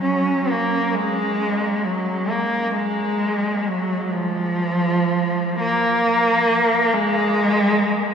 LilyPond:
\new Staff \with { instrumentName = "Cello" } { \clef bass \time 6/8 \key gis \dorian \tempo 4. = 44 <fis cis'>8 ais8 gis4 fis8 ais8 | gis4 fis8 eis4. | ais4. gis4. | }